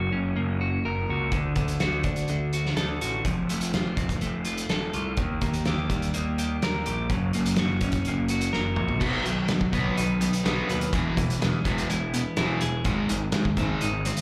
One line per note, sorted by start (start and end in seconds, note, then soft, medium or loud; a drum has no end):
0.00 0.61 F#3 medium
0.00 0.35 A#3 medium
0.00 0.60 F#4 medium
0.12 0.32 F#1 medium
0.12 1.33 C#4 medium
0.36 0.77 F#1 medium
0.36 1.33 A#3 medium
0.61 1.09 F#4 medium
0.85 1.05 F#1 medium
0.85 1.33 A#4 medium
1.09 1.29 C#2 medium
1.09 1.33 F#4 medium
1.32 1.52 D2 medium
1.32 1.56 D3 medium
1.32 kick loud
1.32 closed hi-hat medium
1.56 1.77 D2 medium
1.56 2.28 D3 medium
1.56 kick medium
1.56 closed hi-hat medium
1.68 closed hi-hat medium
1.80 2.02 D2 medium
1.80 2.52 F#4 medium
1.80 snare loud
1.80 closed hi-hat medium
2.04 2.25 D2 medium
2.04 3.25 D4 medium
2.04 kick medium
2.04 closed hi-hat medium
2.16 closed hi-hat medium
2.28 2.70 D2 medium
2.28 3.25 D3 medium
2.28 closed hi-hat medium
2.53 3.00 F#4 medium
2.53 closed hi-hat soft
2.65 snare soft
2.77 2.98 D2 medium
2.77 3.25 A4 medium
2.77 snare medium
2.77 closed hi-hat medium
3.01 3.22 A1 medium
3.01 3.25 F#4 medium
3.01 closed hi-hat medium
3.25 3.45 F1 medium
3.25 4.46 F3 medium
3.25 kick loud
3.25 closed hi-hat medium
3.49 3.70 F1 medium
3.49 4.20 A3 medium
3.49 closed hi-hat medium
3.61 closed hi-hat medium
3.74 3.95 F1 medium
3.74 4.45 F4 medium
3.74 snare loud
3.74 closed hi-hat medium
3.97 4.17 F1 medium
3.97 5.18 C4 medium
3.97 kick medium
3.97 closed hi-hat medium
4.09 kick medium
4.09 closed hi-hat medium
4.21 4.63 F1 medium
4.21 5.18 A3 medium
4.21 closed hi-hat medium
4.45 4.93 F4 medium
4.45 closed hi-hat medium
4.57 closed hi-hat medium
4.69 4.90 F1 medium
4.69 5.18 A4 medium
4.69 snare loud
4.69 closed hi-hat medium
4.93 5.14 C2 medium
4.93 5.18 F4 medium
4.93 closed hi-hat medium
5.17 5.38 D#2 medium
5.17 6.38 D#3 medium
5.17 kick loud
5.17 closed hi-hat medium
5.41 5.62 D#2 medium
5.41 6.13 A#3 medium
5.41 kick medium
5.41 closed hi-hat medium
5.53 closed hi-hat medium
5.65 5.87 D#2 medium
5.65 6.38 G4 medium
5.65 snare loud
5.65 closed hi-hat medium
5.90 6.10 D#2 medium
5.90 7.10 G3 medium
5.90 kick medium
5.90 closed hi-hat medium
6.02 closed hi-hat medium
6.14 6.55 D#2 medium
6.14 7.10 A#3 medium
6.14 closed hi-hat medium
6.38 6.85 G4 medium
6.38 closed hi-hat medium
6.62 6.83 D#2 medium
6.62 7.10 A#4 medium
6.62 snare loud
6.62 closed hi-hat medium
6.86 7.07 A#1 medium
6.86 7.10 G4 medium
6.86 closed hi-hat medium
7.10 7.30 F#1 medium
7.10 8.31 F#3 medium
7.10 kick medium
7.10 closed hi-hat medium
7.33 7.55 F#1 medium
7.33 8.07 A#3 medium
7.33 closed hi-hat medium
7.46 closed hi-hat medium
7.56 8.29 F#4 medium
7.56 snare loud
7.56 closed hi-hat medium
7.60 7.79 F#1 medium
7.81 8.02 F#1 medium
7.81 9.03 C#4 medium
7.81 kick medium
7.81 closed hi-hat medium
7.92 kick medium
7.92 closed hi-hat medium
8.05 8.48 F#1 medium
8.05 9.03 A#3 medium
8.05 closed hi-hat medium
8.28 8.77 F#4 medium
8.28 closed hi-hat medium
8.41 closed hi-hat medium
8.53 8.75 F#1 medium
8.53 9.02 A#4 medium
8.53 snare medium
8.76 8.99 A#1 medium
8.76 9.02 F#4 medium
8.76 mid tom medium
8.88 floor tom medium
9.00 9.16 B1 medium
9.00 9.24 B2 medium
9.00 10.22 B2 medium
9.00 9.24 F#3 medium
9.00 9.25 B3 medium
9.00 kick loud
9.00 crash medium
9.25 9.40 B1 medium
9.25 9.47 B2 medium
9.25 10.46 D#3 medium
9.25 9.48 F#3 medium
9.25 closed hi-hat medium
9.48 9.71 B2 medium
9.48 9.65 B2 medium
9.48 9.72 F#3 medium
9.48 10.70 F#3 medium
9.48 snare loud
9.48 closed hi-hat medium
9.61 kick medium
9.72 9.88 B1 medium
9.72 9.95 B2 medium
9.72 9.96 F#3 medium
9.72 10.21 B3 medium
9.72 9.97 B3 loud
9.72 kick medium
9.72 closed hi-hat medium
9.97 10.27 B1 medium
9.97 10.19 B2 medium
9.97 10.19 F#3 medium
9.97 10.45 D#4 medium
9.97 closed hi-hat medium
10.20 10.43 B2 medium
10.20 10.43 F#3 medium
10.20 10.94 B3 medium
10.20 closed hi-hat medium
10.33 closed hi-hat medium
10.44 10.61 B1 medium
10.44 10.66 B2 medium
10.44 10.67 F#3 medium
10.44 10.68 B3 medium
10.44 10.94 D#4 medium
10.44 snare loud
10.44 closed hi-hat medium
10.68 10.85 D#2 medium
10.68 10.90 B2 medium
10.68 10.91 F#3 medium
10.68 10.94 B4 medium
10.68 snare soft
10.68 closed hi-hat medium
10.81 closed hi-hat medium
10.92 11.08 E1 medium
10.92 11.15 E2 medium
10.92 12.14 E2 medium
10.92 11.15 B2 medium
10.92 11.16 E3 medium
10.92 kick loud
10.92 closed hi-hat medium
11.16 11.32 E1 medium
11.16 11.39 E2 medium
11.16 11.39 B2 medium
11.16 12.38 E3 medium
11.16 kick medium
11.16 closed hi-hat medium
11.30 closed hi-hat medium
11.40 11.63 E2 medium
11.40 11.57 E2 medium
11.40 11.63 B2 medium
11.40 12.62 G#3 medium
11.40 snare loud
11.40 closed hi-hat medium
11.65 11.80 E1 medium
11.65 11.88 E2 medium
11.65 11.88 B2 medium
11.65 11.89 E3 medium
11.65 12.13 B3 medium
11.65 kick medium
11.65 closed hi-hat medium
11.78 closed hi-hat medium
11.89 12.20 E1 medium
11.89 12.11 E2 medium
11.89 12.11 B2 medium
11.89 12.36 E4 medium
11.89 closed hi-hat medium
12.14 12.35 E2 medium
12.14 12.35 B2 medium
12.14 12.86 B3 medium
12.14 closed hi-hat medium
12.37 12.53 E1 medium
12.37 12.60 E2 medium
12.37 12.60 B2 medium
12.37 12.61 E3 loud
12.37 12.85 E4 medium
12.37 snare loud
12.37 closed hi-hat medium
12.61 12.77 E1 medium
12.61 12.83 E2 medium
12.61 12.84 B2 medium
12.61 12.86 G#4 medium
12.61 closed hi-hat medium
12.84 13.00 G#1 medium
12.84 14.05 G#2 medium
12.84 13.08 G#2 medium
12.84 13.08 D#3 medium
12.84 13.08 G#3 loud
12.84 kick loud
12.84 closed hi-hat medium
13.09 13.25 G#1 medium
13.09 13.31 G#2 medium
13.09 14.21 D#3 medium
13.09 13.31 D#3 medium
13.09 closed hi-hat medium
13.32 13.48 G#2 medium
13.32 13.56 G#2 medium
13.32 13.56 D#3 medium
13.32 14.21 G#3 medium
13.32 snare loud
13.32 closed hi-hat medium
13.45 kick medium
13.57 13.72 G#1 medium
13.57 13.81 G#2 medium
13.57 13.81 D#3 medium
13.57 14.05 C4 medium
13.57 kick medium
13.57 closed hi-hat medium
13.61 13.82 G#3 loud
13.81 14.11 G#1 medium
13.81 14.04 G#2 medium
13.81 14.04 D#3 medium
13.81 14.21 D#4 medium
13.81 closed hi-hat medium
14.05 14.21 G#2 medium
14.05 14.21 D#3 medium
14.05 14.21 C4 medium
14.05 closed hi-hat medium
14.17 closed hi-hat medium